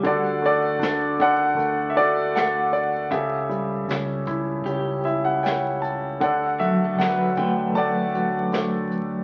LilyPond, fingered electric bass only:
\new Staff \with { instrumentName = "Fingered electric bass" } { \clef bass \time 4/4 \key d \major \tempo 4 = 78 d,4 d,4 d,2 | cis,4 cis,4 cis,2 | d,4 d,4 d,2 | }